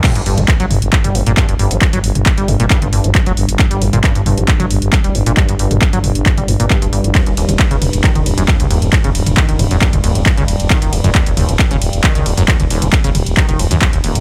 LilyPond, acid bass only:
\new Staff \with { instrumentName = "Acid bass" } { \clef bass \time 4/4 \key ees \lydian \tempo 4 = 135 g,16 g,16 g,16 g16 r16 fis16 r8. g16 g,16 bes,16 g,16 g,16 g,16 g16 | r16 fis16 r8. g16 g,16 bes,16 g,16 g,16 g,16 g16 r16 fis16 r8 | r16 g16 g,16 bes,16 g,16 g,16 g,16 g16 r16 fis16 r8. g16 g,16 bes,16 | g,16 g,16 g,16 g16 r16 fis16 r8. g16 g,16 bes,16 g,16 g,16 g,16 g16 |
ees,16 ees,16 ees,16 ees16 r16 cis16 r8 ees16 ees16 ees,16 ges,16 ees,16 ees,16 ees,16 ees16 | r16 cis16 r8 ees16 ees16 ees,16 ges,16 ees,16 ees,16 ees,16 ees16 r16 cis16 r8 | ees16 ees16 ees,16 ges,16 ees,16 ees,16 ees,16 ees16 r16 cis16 r8 ees16 ees16 ees,16 ges,16 | ees,16 ees,16 ees,16 ees16 r16 cis16 r8 ees16 ees16 ees,16 ges,16 ees,16 ees,16 ees,16 ees16 | }